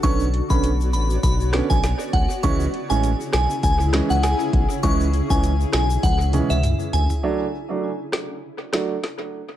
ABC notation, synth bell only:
X:1
M:4/4
L:1/16
Q:"Swing 16ths" 1/4=100
K:C#phr
V:1 name="Synth bell"
c'2 z b2 z b2 b z2 g z2 f z | c'2 z g2 z g2 g z2 f g3 z | c'2 z g2 z g2 f z2 e z2 g z | z16 |]